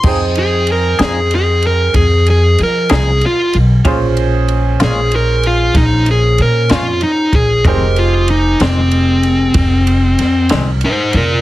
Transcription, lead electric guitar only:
\new Staff \with { instrumentName = "Lead electric guitar" } { \time 12/8 \key f \minor \tempo 4. = 63 r8 aes'8 bes'8 aes'8 aes'8 bes'8 aes'8 aes'8 bes'8 aes'8 f'8 r8 | r4. aes'8 bes'8 f'8 ees'8 aes'8 bes'8 f'8 ees'8 aes'8 | bes'8 f'8 ees'8 c'2. r8 <ees' c''>8 <f' bes'>8 | }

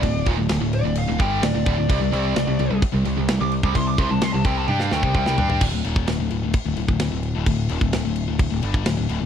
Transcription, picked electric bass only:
\new Staff \with { instrumentName = "Picked electric bass" } { \clef bass \time 4/4 \key c \mixolydian \tempo 4 = 129 d,,8 ees,,16 d,,16 d,,16 d,,8 d,,8 d,,16 g,,8 d,,16 d,,16 d,,16 d,,16 | c,16 c,16 c,8 c,16 c,16 c,16 c,16 r16 c,16 c,16 c,16 c,16 c,8 c,16 | c,8 c,16 c,16 c,16 c,16 c,8 g,8 d,16 c,16 c,16 c,16 g,16 g,16 | d,,16 d,,16 ees,,8 d,,16 d,,16 d,,16 d,,16 r16 d,,16 d,,16 d,,16 d,,16 d,,8 d,,16 |
d,,8 ees,,16 d,,16 d,,16 d,,8 d,,8 d,,16 g,,8 d,,16 d,,16 d,,16 d,,16 | }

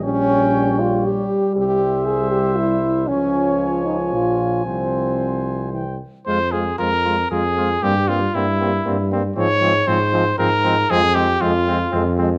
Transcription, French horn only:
\new Staff \with { instrumentName = "French horn" } { \time 3/4 \key f \minor \tempo 4 = 117 des'4. f'8 g'4 | g'4 aes'8 g'8 e'4 | des'4. ees'8 f'4 | c'2~ c'8 r8 |
c'8 c'8 c'8 c'8 c'8 c'8 | bes8 bes8 bes8 bes8 bes8 bes8 | aes8 aes8 aes8 aes8 aes8 aes8 | aes8 aes8 aes8 aes8 aes8 aes8 | }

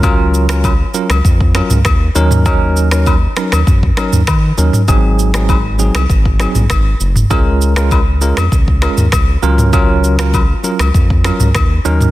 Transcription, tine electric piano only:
\new Staff \with { instrumentName = "Tine electric piano" } { \time 4/4 \key ges \lydian \tempo 4 = 99 <ges des' f' bes'>8. <ges des' f' bes'>16 r8 <ges des' f' bes'>8 r8 <ges des' f' bes'>8 r8 <ges des' ees' bes'>8 | <ges des' ees' bes'>8. <ges des' ees' bes'>16 r8 <ges des' ees' bes'>8 r8 <ges des' ees' bes'>8 r8 <ges des' ees' bes'>8 | <ges c' ees' aes'>8. <ges c' ees' aes'>16 r8 <ges c' ees' aes'>8 r8 <ges c' ees' aes'>8 r4 | <aes des' f' bes'>8. <aes des' f' bes'>16 r8 <aes des' f' bes'>8 r8 <aes des' f' bes'>8 r8 <ges des' f' bes'>8 |
<ges des' f' bes'>8. <ges des' f' bes'>16 r8 <ges des' f' bes'>8 r8 <ges des' f' bes'>8 r8 <ges des' ees' bes'>8 | }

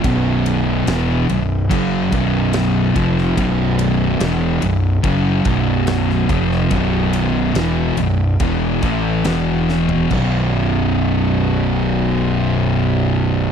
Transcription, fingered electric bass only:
\new Staff \with { instrumentName = "Fingered electric bass" } { \clef bass \time 4/4 \key e \dorian \tempo 4 = 71 b,,,4 e,,8 b,,,8 fis,,8 b,,,4 eis,,8 | b,,,4 e,,8 b,,,8 fis,,8 b,,,4 eis,,8 | b,,,4 e,,8 b,,,8 e,,8 a,,8 e,,4 | b,,,1 | }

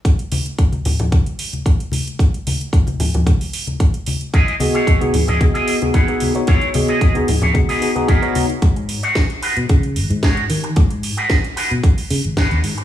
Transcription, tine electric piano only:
\new Staff \with { instrumentName = "Tine electric piano" } { \time 4/4 \key gis \minor \tempo 4 = 112 r1 | r1 | r8 <b fis' gis' dis''>8. <b dis' fis' gis'>16 r8 <b fis' gis' dis''>8. <b dis' fis' gis'>8 <b dis' fis' gis'>8 <b dis' fis' cis''>16~ | <b dis' fis' cis''>16 r16 <b fis' gis' dis''>8. <b dis' fis' gis'>16 r8 <b dis' fis' gis'>8 <b dis' fis' gis'>16 <b dis' fis' gis'>8 <b dis' fis' cis''>8 r16 |
r1 | r1 | }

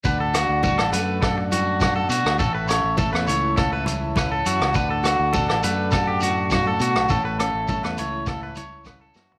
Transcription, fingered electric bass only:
\new Staff \with { instrumentName = "Fingered electric bass" } { \clef bass \time 4/4 \key d \major \tempo 4 = 102 d,8. d,8 a,,16 fis,2 b,16 d,16 | a,,8. a,,8 e,16 cis,2 fis,16 cis,16 | d,8. d,8 a,,16 fis,2 b,16 b,,16 | a,,8. a,,8 e,16 cis,2 fis,16 a,,16 | }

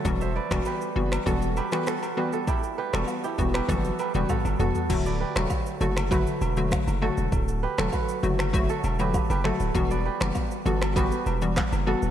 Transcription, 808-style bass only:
\new Staff \with { instrumentName = "808-style bass" } { \clef bass \time 4/4 \key d \mixolydian \tempo 4 = 99 e,,8. e,,16 r8 fis,,8 e,,8. r4 r16 | r8. e,,16 r8 e,,8 fis,,8 r16 e,,16 r16 g,,16 e,,16 r16 | d,,8. e,,16 r8 fis,,4 e,,8. fis,,8 e,,16 | d,,8. e,,16 r8 fis,,4 e,,8. fis,,8 d,,16 |
e,,8. fis,,16 r8 g,,4 e,,8. fis,,8 d,,16 | }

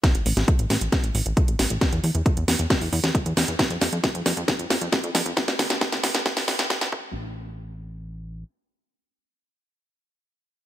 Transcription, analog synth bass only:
\new Staff \with { instrumentName = "Analog synth bass" } { \clef bass \time 4/4 \key f \lydian \tempo 4 = 135 r16 a,,16 a,,16 a,,16 r16 a,,16 a,,16 a,,16 r16 a,,16 a,,16 a,,16 r16 a,,16 a,,16 a,,16 | r16 e,16 e,16 e,16 r16 e,16 e,16 e,16 r16 e,16 e,16 e,16 r16 e,16 e,16 e,16 | r16 f,16 f,16 f,16 r16 f,16 f,16 f,16 r16 f,16 f,16 f,16 r16 f,16 f,16 f,16 | r16 d,16 d,16 d,16 r16 d,16 d,16 d,16 r16 d,16 d,16 d,16 r16 d,16 a,,8~ |
a,,2. r4 | r1 | }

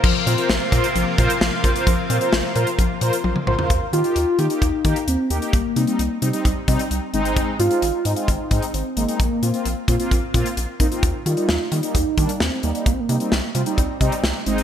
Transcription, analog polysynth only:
\new Staff \with { instrumentName = "Analog polysynth" } { \time 4/4 \key ees \major \tempo 4 = 131 r8 <f' bes' c''>16 <f' bes' c''>16 r8 <f' bes' c''>16 r8. <f' bes' c''>16 r8. <f' bes' c''>16 <f' bes' c''>16 | r8 <f' bes' c''>16 <f' bes' c''>16 r8 <f' bes' c''>16 r8. <f' bes' c''>16 r8. <f' bes' c''>16 <f' bes' c''>16 | r8 <bes ees' g'>16 <bes ees' g'>16 r8 <bes ees' g'>16 <bes ees' g'>16 r8 <bes ees' g'>16 r8. <bes ees' g'>16 <bes ees' g'>16 | r8 <g c' ees'>16 <g c' ees'>16 r8 <g c' ees'>16 <g c' ees'>16 r8 <g c' ees'>16 r8. <aes c' ees'>8~ |
<aes c' ees'>16 r16 <aes c' d'>16 <aes c' ees'>16 r8 <aes c' ees'>16 <aes c' f'>16 r8 <aes c' ees'>16 r8. <aes c' ees'>16 <aes c' ees'>16 | r8 <bes c' f'>16 <bes c' f'>16 r8 <bes c' f'>16 <bes c' f'>16 r8 <bes c' f'>16 r8. <bes c' ees'>16 <bes c' f'>16 | r8 <g bes ees'>16 <g bes ees'>16 r8 <g bes ees'>16 <g bes ees'>16 r8 <g bes d'>16 r8. <g bes ees'>16 <g bes ees'>16 | r8 <g c' ees'>16 <g c' ees'>16 r8 <g c' f'>16 <g c' ees'>16 r8 <g c' ees'>16 r8. <aes c' ees'>8 | }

